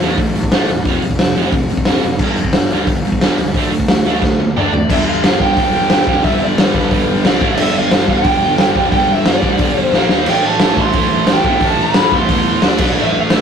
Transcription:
0.00 E2 A2 E3 A3, open hi-hat
0.18 A1 A2 E3, kick, open hi-hat
0.35 A1 A2 E3, open hi-hat
0.43 kick
0.52 A1 A2 E3 A3, snare, open hi-hat
0.69 E1 A2 E3, open hi-hat
0.85 F1 F2 C3 F3, kick, open hi-hat
1.02 F1 F2 C3, open hi-hat
1.11 kick
1.19 F1 F2 C3, snare, open hi-hat
1.36 F1 F2 C3 F3, open hi-hat
1.52 F1 F2 C3, kick, open hi-hat
1.69 F1 F2 C3, open hi-hat
1.77 kick
1.85 F1 F2 C3 F3, snare, open hi-hat
2.02 F1 F2 C3, open hi-hat
2.19 G1 G2 D3 G3, kick, crash
2.36 F2 G2 D3, open hi-hat
2.45 kick
2.53 G1 G2 D3, snare, open hi-hat
2.70 D2 G2 D3 G3, open hi-hat
2.87 G1 G2 D3, kick, open hi-hat
3.05 G1 G2 D3, open hi-hat
3.12 kick
3.21 G1 G2 D3 G3, snare, open hi-hat
3.38 C#2 G2 D3, open hi-hat
3.54 D2 D3 A3 D4, kick, open hi-hat
3.72 D2 D3 A3, open hi-hat
3.80 kick
3.88 D2 D3 A3, snare, open hi-hat
4.05 D2 D3 A3 D4, open hi-hat
4.22 D2 D3 A3, kick, snare
4.40 D2 D3 A3, high tom
4.57 D2 D3 A3 D4 D5, mid tom
4.73 D2 D3 A3, floor tom
4.88 G1 G2 D3 G3 E5, kick, crash
5.07 G1 F5
5.23 G1 G2 D3 G3, snare, open hi-hat
5.39 G1 G2 D3 G3 G5, kick
5.56 G1 G2 D3 G3, kick, open hi-hat
5.75 G1
5.89 G1 G2 D3 G3, snare, open hi-hat
6.07 F1 G2 D3 G3, kick
6.24 G1 G2 D3 G3 E5, kick, open hi-hat
6.41 G1 D5
6.58 G1 G2 D3 G3 B4, snare, open hi-hat
6.74 D2 G2 D3 G3, kick
6.91 G1 G2 D3 G3, kick, open hi-hat
7.22 C2 C3 G3 C4 D5, snare, open hi-hat
7.26 C4
7.41 A1 A2 E3 A3, kick
7.57 G1 G2 D3 G3 E5, crash
7.75 G1 F5
7.91 G1 G2 D3 G3, snare, open hi-hat
8.08 G1 G2 D3 G3 G5, kick
8.24 G1 G2 D3 G3, kick, open hi-hat
8.42 G1
8.58 G1 G2 D3 G3, snare, open hi-hat
8.75 F1 G2 D3 G3, kick
8.92 G1 G2 D3 G3 G5, kick, open hi-hat
9.10 G1 E5
9.26 G1 G2 D3 G3 D5, snare, open hi-hat
9.43 D2 G2 D3 G3, kick
9.58 G1 G2 D3 G3, kick, open hi-hat
9.80 C5
9.92 A#1 A#2 F3 A#3 F5, snare
10.09 D#2 D#3 A#3 D#4, snare
10.26 A1 A2 E3 A3 G5, crash
10.44 A1 A5
10.60 A1 A2 E3 A3, snare, open hi-hat
10.77 A1 A2 E3 A3 C6, kick
10.93 A1 A2 E3 A3, kick, open hi-hat
11.12 A1
11.27 A1 A2 E3 A3, snare, open hi-hat
11.33 G5
11.44 G1 A2 E3 A3, kick
11.60 A1 A2 E3 A3, kick, open hi-hat
11.67 A5
11.78 A1
11.82 B5
11.94 A1 A2 E3 A3, snare, open hi-hat
12.12 E2 A2 E3 A3, kick
12.16 C6
12.28 E2 A2 E3 A3, kick, open hi-hat
12.62 D2 D3 A3 D4, snare, open hi-hat
12.68 D5
12.78 B1 B2 F#3 B3, kick, crash
12.96 A1 A2 E3 A3
13.02 E5
13.14 A1
13.20 F5
13.30 A1 A2 E3 A3 E5, snare, open hi-hat

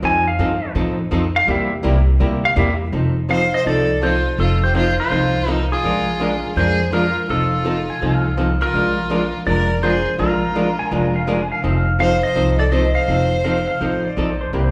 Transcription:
0.02 F2 F3 C4 D#4 A4 G#5
0.27 F5
0.39 G2 F3 C4 D#4 A4
0.75 A2 F3 C4 D#4 A4
1.11 F2 F3 C4 D#4 A4
1.36 F5
1.47 E2 C3 G3 A#3 E4 G4 E5
1.83 C2 C3 G3 A#3 E4 G4
2.20 D2 C3 G3 A#3 E4 G4
2.45 F5
2.56 E2 C3 G3 A#3 E4 G4 E5
2.92 F1 F3 C4 D#4 A4
3.29 F3 C4 D#4 A4 C5 F5
3.54 C5 D#5
3.66 C2 F3 C4 D#4 A4 D5
4.02 F3 C4 D#4 F4 A4 C5
4.38 F1 F3 C4 D#4 F4 A4
4.64 G4 C5
4.74 F3 C4 D#4 F4 A4 C5
4.99 F4 C5
5.10 C2 F3 C4 D#4 A4
5.47 F3 C4 D#4 A4 A#4
5.72 F4 G#4
5.84 A#1 F3 G#3 D4 F4 A#4
6.20 F3 G#3 D4 F4 A#4
6.56 F2 F3 G#3 D4 F4 G#4 A#4 C5
6.92 F3 G#3 D4 F4 A#4
7.29 F1 F3 C4 D#4 F4 A4
7.65 F3 C4 D#4 A4
7.90 G#5
8.01 C2 F3 C4 D#4 A4
8.14 F5
8.27 F5
8.37 F3 C4 D#4 A4
8.61 F4 A#4
8.74 A#1 F3 G#3 D4 F4 A#4
9.10 F3 G#3 D4 F4 A#4
9.46 F1 F3 G#3 D4 F4 A#4 D5
9.82 F3 G#3 D4 F4 G#4 A#4 C5
10.18 A#1 F3 G#3 D4 F4 A#4
10.55 F3 G#3 D4 F4 A#4
10.79 G#5
10.91 F1 F3 G#3 D4 F4 A#4 A#5
11.16 F5
11.27 F3 G#3 D4 F4 A#4 G#5
11.52 F5
11.63 F1 F3 C4 D#4 A4
11.99 F3 C4 D#4 A4 C5 F5
12.23 C5 D#5
12.35 C2 F3 C4 D#4 A4
12.58 A4 D5
12.71 F3 C4 D#4 A4 C5 D#5
12.94 C5 F5
13.08 F1 F3 C4 D#4 A4
13.44 F3 C4 D#4 A4 F5
13.67 F5
13.81 A1 F3 C4 D#4 A4 C5
14.04 D5
14.17 A#1 F3 C4 D#4 A4
14.41 C5
14.53 C2 C3 G3 A#3 E4 G4

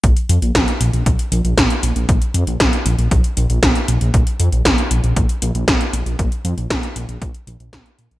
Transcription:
0.04 A#1, kick, closed hi-hat
0.17 closed hi-hat
0.29 F2, closed hi-hat
0.42 A#1, closed hi-hat
0.55 A#1, kick, snare, closed hi-hat
0.68 closed hi-hat
0.81 A#1, closed hi-hat
0.93 A#1, closed hi-hat
1.06 A#1, kick, closed hi-hat
1.19 closed hi-hat
1.32 A#1, closed hi-hat
1.45 A#1, closed hi-hat
1.58 A#1, kick, snare, closed hi-hat
1.70 closed hi-hat
1.83 A#1, closed hi-hat
1.96 A#1, closed hi-hat
2.09 A#1, kick, closed hi-hat
2.22 closed hi-hat
2.34 F2, closed hi-hat
2.47 A#1, closed hi-hat
2.60 A#1, kick, snare, closed hi-hat
2.73 closed hi-hat
2.86 A#1, closed hi-hat
2.98 A#1, closed hi-hat
3.11 A#1, kick, closed hi-hat
3.24 closed hi-hat
3.37 A#1, closed hi-hat
3.50 A#1, closed hi-hat
3.63 A#1, kick, snare, closed hi-hat
3.75 closed hi-hat
3.88 A#1, closed hi-hat
4.01 A#1, closed hi-hat
4.14 A#1, kick, closed hi-hat
4.27 closed hi-hat
4.40 F2, closed hi-hat
4.52 A#1, closed hi-hat
4.65 A#1, kick, snare, closed hi-hat
4.78 closed hi-hat
4.91 A#1, closed hi-hat
5.04 A#1, closed hi-hat
5.16 A#1, kick, closed hi-hat
5.29 closed hi-hat
5.42 A#1, closed hi-hat
5.55 A#1, closed hi-hat
5.68 A#1, kick, snare, closed hi-hat
5.81 closed hi-hat
5.93 A#1, closed hi-hat
6.06 A#1, closed hi-hat
6.19 A#1, kick, closed hi-hat
6.32 closed hi-hat
6.45 F2, closed hi-hat
6.58 A#1, closed hi-hat
6.70 A#1, kick, snare, closed hi-hat
6.83 closed hi-hat
6.96 A#1, closed hi-hat
7.09 A#1, closed hi-hat
7.22 A#1, kick, closed hi-hat
7.34 closed hi-hat
7.47 A#1, closed hi-hat
7.60 A#1, closed hi-hat
7.73 A#1, kick, snare, closed hi-hat
7.86 closed hi-hat
7.99 A#2, closed hi-hat
8.11 A#1, closed hi-hat

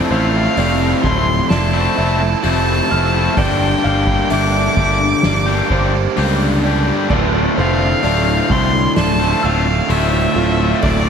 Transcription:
Already playing: F2 C3 A3 C4 E4 D5
0.10 A1 F3 A3 C4 E4 C5 F5
0.33 F3 A3 C4 E4
0.56 F1 F2 C3 F3 A3 C4 E4 D5, open hi-hat
1.02 D1 F3 A3 C4 E4 C6, kick
1.27 muted overdriven electric guitar stroke
1.49 F1 D5 A5, snare, open hi-hat
1.72 F3 A3 C4 E4
1.96 F1 F3 A3 C4 E4 E5
2.19 F3 A3 C4 E4, muted overdriven electric guitar stroke
2.42 F1 F2 C3 F3 A3 C4 E4 A5, open hi-hat
2.89 F1 F3 A3 C4 E4 F6
3.13 F3 A3 C4 E4
3.36 G1 G2 D3 G3 A#3 D4 G4 D5 G5, kick, open hi-hat
3.60 G3 A#3 D4 G4
3.83 G1 G3 A#3 D4 G4 F5
4.07 G3 A#3 D4 G4, kick
4.30 G1 G2 D3 G3 A#3 D4 G4 E5 D6, open hi-hat
4.76 G1 G3 A#3 D4 G4, kick
5.01 muted overdriven electric guitar stroke
5.23 G1 D5, snare, open hi-hat
5.47 G3 A#3 D4 G4
5.69 G1 G3 A#3 D4 G4 C5, kick
5.93 G3 A#3 D4 G4, muted overdriven electric guitar stroke
6.16 C#2 G2 D3 G3 A#3 D4 G4, open hi-hat
6.63 G3 A#3 D4 G4 D5
6.86 G3 A#3 D4 G4
7.09 D1 D2 A2 D3 A3 C4 F4 D5, kick, crash
7.32 D3 A3 C4 F4
7.55 F1 D3 A3 C4 F4 C5 F5
7.78 D3 A3 C4 F4
8.01 D1 D2 A2 D3 A3 C4 F4 D5, open hi-hat
8.48 C2 D3 A3 C4 F4 C6, kick
8.73 muted overdriven electric guitar stroke
8.96 D1 D5 A5, snare, open hi-hat
9.18 D3 A3 C4 F4
9.42 D1 D3 A3 C4 F4 F5 E6
9.64 D3 A3 C4 F4, muted overdriven electric guitar stroke
9.88 D1 D2 A2 D3 A3 C4 F4 E5, open hi-hat
10.35 D1 D3 A3 C4 F4
10.59 D3 A3 C4 F4
10.82 D1 D2 A2 D3 A3 C4 F4 D5, kick, open hi-hat
11.05 F4

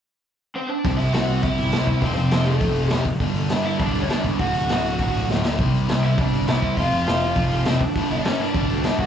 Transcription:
0.55 C4 C5
0.69 D4 D5
0.84 C2 C3 G3 C4, kick, open hi-hat
0.97 C2 E4 E5, open hi-hat
1.13 C2 C3 G3 C4 F#4 F#5, snare, open hi-hat
1.28 open hi-hat
1.43 G1 C3 G3 C4 E4 E5, kick, open hi-hat
1.58 G1, open hi-hat
1.72 C2 C3 G3 C4, snare, open hi-hat
1.87 C2, kick, open hi-hat
2.02 F1 F2 C3 F3 C4 C5, kick, open hi-hat
2.15 F1 C4 C5, open hi-hat
2.31 F1 F2 C3 F3, snare, open hi-hat
2.45 A3 A4, open hi-hat
2.61 F1 F2 C3 F3, kick, open hi-hat
2.76 F1, open hi-hat
2.89 F1 F2 C3 F3 G4, snare, open hi-hat
3.05 G1, kick, open hi-hat
3.20 G1 G2 D3 G3, kick, open hi-hat
3.34 G1, open hi-hat
3.49 G2 D3 G3, snare, open hi-hat
3.65 E4 E5, open hi-hat
3.78 D1 G2 D3 G3 D4 D5, kick, open hi-hat
3.95 D2, open hi-hat
4.01 C#5
4.09 G2 D3 G3 D4 D5, snare, open hi-hat
4.24 C#2, kick, open hi-hat
4.39 D1 D2 A2 D3 F#4 F#5, kick, open hi-hat
4.54 D1, open hi-hat
4.69 D1 D2 A2 D3, snare, open hi-hat
4.85 open hi-hat
4.99 D1 D2 A2 D3, kick, open hi-hat
5.13 D1, open hi-hat
5.29 D1 D2 A2 D3, snare
5.44 D1, snare
5.59 C2 C3 G3 C4, kick, open hi-hat
5.73 C2, open hi-hat
5.88 C2 C3 G3 C4, snare, open hi-hat
6.04 E4 E5, open hi-hat
6.17 G1 C3 G3 C4 D4 D5, kick, open hi-hat
6.33 G1, open hi-hat
6.47 C2 C3 G3 C4 E4 E5, snare, open hi-hat
6.62 C2, kick, open hi-hat
6.77 F1 F2 C3 F3 F4 F5, kick, open hi-hat
6.92 F1, open hi-hat
7.07 F1 F2 C3 F3, snare, open hi-hat
7.22 open hi-hat
7.36 F1 F2 C3 F3, kick, open hi-hat
7.51 F1, open hi-hat
7.65 F1 F2 C3 F3 C4 C5, snare, open hi-hat
7.80 G1 D4 D5, kick, open hi-hat
7.95 G1 G2 D3 G3, kick, open hi-hat
8.10 G1 E4 E5, open hi-hat
8.17 D4 D5
8.24 G2 D3 G3 C#4 C#5, snare, open hi-hat
8.39 D4 D5, open hi-hat
8.54 D1 G2 D3 G3, kick, open hi-hat
8.70 D2, open hi-hat
8.84 G2 D3 G3, snare, open hi-hat
8.99 C#2 F#4 F#5, kick, open hi-hat

